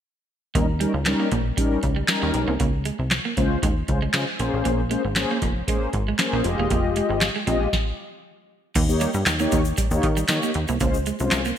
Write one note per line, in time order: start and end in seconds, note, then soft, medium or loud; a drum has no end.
0.55 0.86 D#2 loud
0.55 0.66 G3 medium
0.55 0.63 A#3 medium
0.55 0.66 C#4 medium
0.55 0.66 D#4 medium
0.55 0.67 A#4 loud
0.55 kick loud
0.55 closed hi-hat medium
0.80 0.89 G3 medium
0.80 0.92 G3 medium
0.80 0.92 C#4 medium
0.80 0.92 D#4 medium
0.80 0.92 A#4 loud
0.80 closed hi-hat medium
0.94 1.15 C#2 medium
0.94 muted clean electric guitar stroke soft
1.06 1.28 G3 loud
1.06 1.28 C#4 medium
1.06 1.28 D#4 medium
1.06 1.28 A#4 loud
1.06 muted clean electric guitar stroke soft
1.06 snare loud
1.06 clap medium
1.06 closed hi-hat medium
1.20 1.27 A#3 medium
1.32 1.53 A#1 loud
1.32 1.40 A#3 medium
1.32 kick medium
1.32 closed hi-hat medium
1.57 1.79 G3 medium
1.57 1.66 G3 medium
1.57 1.79 C#4 medium
1.57 1.79 D#4 medium
1.57 1.79 A#4 medium
1.57 kick loud
1.57 closed hi-hat loud
1.83 2.04 C#2 medium
1.83 muted clean electric guitar stroke soft
1.83 kick medium
1.83 closed hi-hat medium
1.96 2.04 G3 medium
2.08 2.52 G3 medium
2.08 2.52 C#4 medium
2.08 2.52 D#4 medium
2.08 2.52 A#4 medium
2.08 snare loud
2.08 clap medium
2.08 closed hi-hat loud
2.22 2.32 D#2 loud
2.22 2.30 A#3 medium
2.34 2.45 B1 medium
2.34 muted clean electric guitar stroke soft
2.34 closed hi-hat medium
2.48 2.58 C2 loud
2.48 2.55 A#3 medium
2.60 2.91 C#2 loud
2.60 2.68 A#3 medium
2.60 kick loud
2.60 closed hi-hat medium
2.85 2.94 G#3 medium
2.85 closed hi-hat medium
2.99 3.20 C2 medium
2.99 muted clean electric guitar stroke soft
3.11 muted clean electric guitar stroke soft
3.11 snare loud
3.11 clap medium
3.11 closed hi-hat medium
3.25 3.33 A#3 medium
3.37 3.58 C#2 medium
3.37 3.58 G#3 loud
3.37 3.46 A#3 medium
3.37 3.58 C#4 medium
3.37 3.59 F4 medium
3.37 3.59 C5 loud
3.37 kick medium
3.37 closed hi-hat medium
3.63 3.83 D#2 loud
3.63 3.72 G#3 medium
3.63 kick loud
3.63 closed hi-hat loud
3.88 4.09 C#2 loud
3.88 3.99 G#3 medium
3.88 4.00 C#4 medium
3.88 4.00 F4 medium
3.88 4.00 C5 medium
3.88 muted clean electric guitar stroke soft
3.88 kick medium
3.88 closed hi-hat medium
4.02 4.10 G#3 medium
4.13 4.25 C#3 medium
4.13 4.25 G#3 loud
4.13 4.25 C#4 medium
4.13 4.25 F4 medium
4.13 4.25 C5 loud
4.13 snare loud
4.13 clap medium
4.13 closed hi-hat medium
4.39 4.51 A#1 medium
4.39 4.81 A#3 medium
4.39 4.48 A#3 medium
4.39 4.81 C#4 medium
4.39 4.81 G#4 medium
4.39 4.81 C5 loud
4.39 closed hi-hat medium
4.53 4.63 A1 medium
4.65 4.97 A#1 loud
4.65 4.74 A#3 medium
4.65 kick loud
4.65 closed hi-hat medium
4.90 4.99 G#3 medium
4.90 5.02 A#3 medium
4.90 5.02 C#4 medium
4.90 5.02 G#4 medium
4.90 5.02 C5 loud
4.90 closed hi-hat medium
5.05 5.25 G#1 medium
5.05 muted clean electric guitar stroke soft
5.16 5.38 A#3 loud
5.16 5.38 C#4 medium
5.16 5.38 G#4 medium
5.16 5.38 C5 loud
5.16 muted clean electric guitar stroke soft
5.16 snare loud
5.16 clap medium
5.16 closed hi-hat medium
5.31 5.38 A#3 medium
5.42 5.63 F1 medium
5.42 5.51 A#3 medium
5.42 kick medium
5.42 closed hi-hat medium
5.67 5.77 G#3 medium
5.67 5.89 A#3 medium
5.67 5.89 C#4 medium
5.67 5.89 G#4 medium
5.67 5.89 C5 medium
5.67 kick loud
5.67 closed hi-hat loud
5.93 6.14 G#1 medium
5.93 muted clean electric guitar stroke soft
5.93 kick medium
5.93 closed hi-hat medium
6.08 6.15 G#3 medium
6.18 6.44 A#3 medium
6.18 6.44 C#4 medium
6.18 6.45 G#4 medium
6.18 6.45 C5 medium
6.18 snare loud
6.18 clap medium
6.18 closed hi-hat loud
6.33 6.43 A#1 medium
6.33 6.41 A#3 medium
6.44 6.56 F1 loud
6.44 7.27 G#3 medium
6.44 7.27 F4 medium
6.44 7.27 G4 medium
6.44 7.27 D#5 loud
6.44 muted clean electric guitar stroke soft
6.44 closed hi-hat medium
6.59 6.68 E1 medium
6.59 6.67 A#3 medium
6.70 7.02 F1 loud
6.70 6.79 A#3 medium
6.70 kick loud
6.70 closed hi-hat medium
6.96 7.05 G#3 medium
6.96 closed hi-hat medium
7.09 7.30 G#1 medium
7.09 muted clean electric guitar stroke soft
7.21 muted clean electric guitar stroke soft
7.21 snare loud
7.21 clap medium
7.21 closed hi-hat medium
7.36 7.43 G#3 medium
7.46 7.68 A#1 medium
7.46 7.68 G#3 medium
7.46 7.56 C4 medium
7.46 7.68 F4 medium
7.46 7.69 G4 medium
7.46 7.69 D#5 loud
7.46 kick medium
7.46 closed hi-hat medium
7.73 kick loud
7.73 snare medium
8.75 9.07 D#2 loud
8.75 8.84 A#3 medium
8.75 kick loud
8.75 closed hi-hat medium
8.75 crash medium
8.75 shaker medium
8.88 9.10 A#3 medium
8.88 9.10 D#4 medium
8.88 9.10 G4 medium
8.88 9.10 C#5 loud
8.88 shaker soft
9.00 9.10 G3 medium
9.00 closed hi-hat medium
9.00 shaker soft
9.14 9.24 G2 medium
9.14 muted clean electric guitar stroke soft
9.14 shaker soft
9.26 9.47 D#2 medium
9.26 muted clean electric guitar stroke soft
9.26 snare loud
9.26 clap medium
9.26 closed hi-hat medium
9.26 shaker medium
9.39 9.47 A#3 medium
9.39 9.61 A#3 medium
9.39 9.61 D#4 medium
9.39 9.61 G4 medium
9.39 9.61 C#5 loud
9.39 shaker soft
9.52 9.73 D#2 medium
9.52 9.61 A#3 medium
9.52 kick medium
9.52 closed hi-hat medium
9.52 shaker medium
9.65 shaker medium
9.77 9.86 G3 medium
9.77 kick loud
9.77 closed hi-hat loud
9.77 shaker medium
9.91 10.01 D#2 medium
9.91 10.06 A#3 loud
9.91 10.07 D#4 medium
9.91 10.07 G4 medium
9.91 10.07 C#5 loud
9.91 shaker medium
10.03 10.24 D#3 loud
10.03 muted clean electric guitar stroke soft
10.03 kick medium
10.03 closed hi-hat medium
10.17 10.24 G3 medium
10.17 shaker medium
10.28 10.40 D#3 medium
10.28 10.50 A#3 medium
10.28 10.51 D#4 medium
10.28 10.51 G4 medium
10.28 10.51 C#5 medium
10.28 snare loud
10.28 clap medium
10.28 closed hi-hat loud
10.28 shaker medium
10.43 10.51 A#3 medium
10.43 shaker medium
10.54 10.66 D#2 medium
10.54 muted clean electric guitar stroke soft
10.54 closed hi-hat medium
10.68 10.78 C2 medium
10.68 10.76 A#3 medium
10.68 shaker medium
10.80 11.12 C#2 loud
10.80 10.97 G#3 medium
10.80 10.89 A#3 medium
10.80 10.97 C#4 medium
10.80 10.97 F4 medium
10.80 10.97 C5 loud
10.80 kick loud
10.80 closed hi-hat medium
10.80 shaker medium
10.94 shaker soft
11.06 11.15 G#3 medium
11.06 closed hi-hat medium
11.06 shaker soft
11.19 11.30 C2 medium
11.19 11.41 G#3 medium
11.19 11.41 C#4 medium
11.19 11.41 F4 medium
11.19 11.41 C5 medium
11.19 muted clean electric guitar stroke soft
11.19 shaker soft
11.31 11.53 C2 medium
11.31 muted clean electric guitar stroke soft
11.31 snare loud
11.31 clap medium
11.31 closed hi-hat medium
11.31 shaker medium
11.45 11.53 A#3 medium
11.45 shaker soft